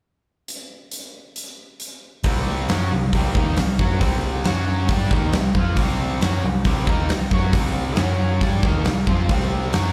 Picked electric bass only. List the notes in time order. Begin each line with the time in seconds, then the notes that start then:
2.24 C2
2.69 F#2
2.92 C2
3.13 C2
3.35 D#2
3.58 C2
3.79 F#2
4.01 C2
4.46 F#2
4.89 G2
5.11 D#2
5.32 C2
5.55 F2
5.76 C2
6.20 F#2
6.43 C2
6.65 C2
6.87 D#2
7.11 C2
7.32 F#2
7.52 C2
7.97 F#2
8.42 G2
8.63 D#2
8.86 C2
9.07 F2
9.29 C2
9.73 F#2